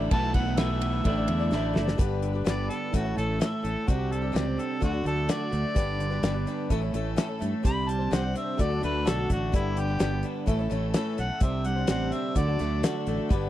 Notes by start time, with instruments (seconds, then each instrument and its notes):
Already playing: fingered electric bass A1, clean electric guitar D3 A3 D4 E4, string section E3 A3 A4, grand piano D5 E5
0.00 steel-string acoustic guitar D4 E4 D5
0.11 fingered electric bass B1, clean electric guitar B2 E3 A3, steel-string acoustic guitar B3 E4 A4 B4, string section B3, grand piano A4 B4 E5, harmonica A5, kick, ride
0.34 clean electric guitar A3, steel-string acoustic guitar B3 E4 A4 B4, harmonica F#5, kick, ride
0.45 steel-string acoustic guitar E4 A4 B4
0.57 clean electric guitar B2 E3 A3, steel-string acoustic guitar B3 E4 A4 B4, harmonica E5, snare, ride
0.69 steel-string acoustic guitar E4 A4 B4
0.79 steel-string acoustic guitar B3 E4 A4 B4, ride
0.92 steel-string acoustic guitar E4 A4 B4
1.04 fingered electric bass A1, clean electric guitar A2 D3, string section E3 A3 D4 A4, steel-string acoustic guitar A3 D4 E4 D5, grand piano A4 D5 E5, kick, ride
1.16 steel-string acoustic guitar D4 E4 D5
1.28 fingered electric bass E2, clean electric guitar A3 D4 E4, ride
1.39 steel-string acoustic guitar D4 E4 D5
1.51 fingered electric bass A1, clean electric guitar D3, steel-string acoustic guitar A3 D4 E4 D5, grand piano A4 D5 E5, snare
1.73 fingered electric bass F#1, steel-string acoustic guitar A3 D4 E4 D5, grand piano A4 D5 E5, snare
1.78 clean electric guitar A3
1.85 steel-string acoustic guitar D4 E4 D5, snare
1.97 fingered electric bass G1, steel-string acoustic guitar G2 D3 G3 D4 G4 B4, string section G3 B3 D4 B4, grand piano G4 B4 D5, kick, closed hi-hat
2.22 clean electric guitar D3, closed hi-hat
2.33 steel-string acoustic guitar G3 D4 G4 B4
2.45 fingered electric bass G1, steel-string acoustic guitar G2 D3 G3 D4 G4 B4, clean electric guitar B3, harmonica D5, snare, closed hi-hat
2.68 steel-string acoustic guitar G3 D4 G4 B4, harmonica A4, closed hi-hat
2.91 fingered electric bass A1, steel-string acoustic guitar A2 E3 A3 C#4 E4 A4, string section E3 A3 C#4 A4, grand piano E4 A4 C#5, harmonica F#4, kick, closed hi-hat
3.04 steel-string acoustic guitar A3 C#4 E4 A4
3.15 fingered electric bass A1, steel-string acoustic guitar A3 C#4 E4 A4, grand piano E4 A4 C#5, harmonica A4, closed hi-hat
3.40 steel-string acoustic guitar A2 E3 A3 C#4 E4 A4, harmonica E5, snare, closed hi-hat
3.51 steel-string acoustic guitar A3 C#4 E4 A4
3.62 fingered electric bass A1, steel-string acoustic guitar A3 C#4 E4 A4, harmonica A4, closed hi-hat
3.86 fingered electric bass C2, steel-string acoustic guitar C3 G3 C4 D4 G4, string section D3 G3 C4 G4, harmonica F#4, grand piano G4 C5 D5, kick, closed hi-hat
4.11 clean electric guitar G3, harmonica A4, closed hi-hat
4.22 steel-string acoustic guitar C4 D4 G4
4.32 fingered electric bass C#2, steel-string acoustic guitar C3 G3 C4 D4 G4, harmonica D5, closed hi-hat
4.36 snare
4.45 steel-string acoustic guitar C4 D4 G4
4.57 steel-string acoustic guitar G3 C4 D4 G4, harmonica A4, closed hi-hat
4.80 fingered electric bass D2, steel-string acoustic guitar D3 A3 D4 F#4 A4, string section F#3 A3 D4 A4, grand piano F#4 A4 D5, harmonica F#4, kick, closed hi-hat
4.91 steel-string acoustic guitar D4 F#4 A4
5.04 fingered electric bass D2, steel-string acoustic guitar A3 D4 F#4 A4, grand piano F#4 A4 D5, harmonica A4, closed hi-hat
5.28 steel-string acoustic guitar D3 A3 D4 F#4 A4, harmonica D5, snare, closed hi-hat
5.38 steel-string acoustic guitar D4 F#4 A4
5.51 fingered electric bass D2, steel-string acoustic guitar A3 D4 F#4 A4, closed hi-hat
5.74 fingered electric bass G1, steel-string acoustic guitar G2 D3 G3 D4 G4 B4, string section G3 B3 D4 B4, grand piano G4 B4 D5, kick, closed hi-hat
5.99 clean electric guitar D3, closed hi-hat
6.10 steel-string acoustic guitar G3 D4 G4 B4
6.23 fingered electric bass G1, steel-string acoustic guitar G2 D3 G3 D4 G4 B4, clean electric guitar B3, snare, closed hi-hat
6.33 steel-string acoustic guitar G3 D4 G4 B4
6.46 steel-string acoustic guitar G3 D4 G4 B4, closed hi-hat
6.69 fingered electric bass A1, steel-string acoustic guitar A2 E3 A3 C#4 E4 A4, string section E3 A3 C#4 A4, grand piano A4 C#5 E5, kick, closed hi-hat
6.82 steel-string acoustic guitar A3 C#4 E4 A4
6.92 fingered electric bass A1, steel-string acoustic guitar A3 C#4 E4 A4, grand piano A4 C#5 E5, closed hi-hat
7.16 steel-string acoustic guitar A2 E3 A3 C#4 E4 A4, snare, closed hi-hat
7.28 steel-string acoustic guitar A3 C#4 E4 A4
7.39 fingered electric bass G2, steel-string acoustic guitar A3 C#4 E4 A4, closed hi-hat
7.63 fingered electric bass C2, steel-string acoustic guitar C3 G3 C4 D4 C5, string section D3 G3 C4 G4, grand piano G4 C5 D5, harmonica B5, kick, closed hi-hat
7.89 clean electric guitar G3, harmonica A5, closed hi-hat
7.98 steel-string acoustic guitar C4 D4 C5
8.11 fingered electric bass C2, steel-string acoustic guitar C3 G3 C4 D4 C5, harmonica F#5, snare, closed hi-hat
8.22 steel-string acoustic guitar C4 D4 C5
8.33 steel-string acoustic guitar G3 C4 D4 C5, closed hi-hat
8.37 harmonica E5
8.57 fingered electric bass D2, steel-string acoustic guitar D3 A3 D4 F#4 A4, string section F#3 A3 D4 A4, grand piano F#4 A4 D5, harmonica D5, kick, closed hi-hat
8.70 steel-string acoustic guitar D4 F#4 A4
8.81 fingered electric bass D2, steel-string acoustic guitar A3 D4 F#4 A4, grand piano F#4 A4 D5, harmonica B4, closed hi-hat
9.05 fingered electric bass B1, steel-string acoustic guitar D3 A3 D4 F#4 A4, harmonica A4, snare, closed hi-hat
9.17 steel-string acoustic guitar D4 F#4 A4
9.28 fingered electric bass A1, steel-string acoustic guitar A3 D4 F#4 A4, kick, closed hi-hat
9.32 harmonica F#4
9.52 fingered electric bass G1, steel-string acoustic guitar G2 D3 G3 B3 D4 G4, string section G3 B3 B4, harmonica E4, grand piano G4 B4 D5, kick, closed hi-hat
9.77 clean electric guitar D3, harmonica G4, closed hi-hat
9.88 steel-string acoustic guitar G3 B3 D4 G4
9.99 fingered electric bass G1, steel-string acoustic guitar G2 D3 G3 B3 D4 G4, snare, closed hi-hat
10.11 steel-string acoustic guitar G3 B3 D4 G4
10.23 steel-string acoustic guitar G3 B3 D4 G4, closed hi-hat
10.46 fingered electric bass A1, steel-string acoustic guitar A2 E3 A3 C#4 E4 A4, string section E3 A3 C#4 A4, grand piano A4 C#5 E5, kick, closed hi-hat
10.59 steel-string acoustic guitar A3 C#4 E4 A4
10.69 fingered electric bass A1, steel-string acoustic guitar A3 C#4 E4 A4, grand piano A4 C#5 E5, closed hi-hat
10.94 steel-string acoustic guitar A2 E3 A3 C#4 E4 A4, snare, closed hi-hat
11.18 fingered electric bass B1, steel-string acoustic guitar A3 C#4 E4 A4, harmonica F#5, closed hi-hat
11.40 fingered electric bass C2, steel-string acoustic guitar C3 G3 C4 D4 C5, string section D3 G3 C4 G4, grand piano G4 C5 D5, harmonica E5, kick, closed hi-hat
11.65 clean electric guitar G3, harmonica F#5, closed hi-hat
11.76 steel-string acoustic guitar C4 D4 C5
11.87 fingered electric bass A1, steel-string acoustic guitar C3 G3 C4 D4 C5, harmonica F#5, snare, closed hi-hat
12.12 steel-string acoustic guitar G3 C4 D4 C5, harmonica E5, closed hi-hat
12.35 fingered electric bass D2, steel-string acoustic guitar D3 A3 D4 F#4 A4, string section F#3 A3 D4 A4, grand piano F#4 A4 D5, harmonica D5, kick, closed hi-hat
12.47 steel-string acoustic guitar D4 F#4 A4
12.59 fingered electric bass D2, steel-string acoustic guitar A3 D4 F#4 A4, grand piano F#4 A4 D5, closed hi-hat
12.83 steel-string acoustic guitar D3 A3 D4 F#4 A4, snare, closed hi-hat
12.94 steel-string acoustic guitar D4 F#4 A4
13.06 fingered electric bass A1, steel-string acoustic guitar A3 D4 F#4 A4, closed hi-hat
13.29 fingered electric bass G1, steel-string acoustic guitar G2 D3 G3 B3 D4 B4, string section G3 B3 B4, grand piano G4 B4 D5, kick, closed hi-hat